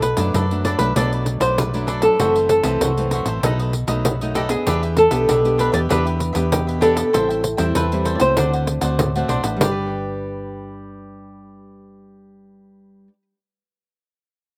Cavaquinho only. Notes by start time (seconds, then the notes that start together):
0.03 muted cavaquinho stroke
0.18 A4 B4 D5
0.35 D4 A4 B4 D5
0.65 D4 A4 B4 D5
0.79 A4 B4 D5
0.96 D4 A4 B4 D5
1.13 A4 B4 D5
1.26 muted cavaquinho stroke
1.40 A4 B4 D5
1.74 A4 B4 D5
1.87 D4 A4 B4 D5
2.02 A4 B4 D5
2.19 F#4 A4 C5 E5
2.36 A4 C5 E5
2.51 muted cavaquinho stroke
2.64 A4 C5 E5
2.82 F#4 A4 C5 E5
3.13 F#4 A4 C5 E5
3.26 A4 C5 E5
3.44 D#4 A4 B4 D#5
3.60 A4 B4 D#5
3.74 muted cavaquinho stroke
3.88 A4 B4 D#5
4.21 A4 B4 D#5
4.34 D#4 A4 B4 D#5
4.49 B4 D#5
4.66 D4 G4 B4 E5
4.82 G4 B4 E5
4.96 muted cavaquinho stroke
5.11 G4 B4 E5
5.28 D4 G4 B4 E5
5.58 D4 G4 B4 E5
5.72 G4 B4 E5
5.89 D4 G4 B4 E5
6.05 G4 B4 E5
6.19 muted cavaquinho stroke
6.33 G4 B4 E5
6.67 G4 B4 E5
6.81 D4 G4 B4 E5
6.95 G4 B4 E5
7.13 A4 C5 E5 G5
7.29 C5 E5 G5
7.43 muted cavaquinho stroke
7.57 C5 E5 G5
7.75 A4 C5 E5 G5
8.05 A4 C5 E5 G5
8.20 C5 E5 G5
8.37 D4 C5 D5 F#5
8.53 C5 D5 F#5
8.67 muted cavaquinho stroke
8.81 C5 D5 F#5
9.16 C5 D5 F#5
9.28 D4 C5 D5 F#5
9.43 C5 D5 F#5
9.61 G4 B4 D5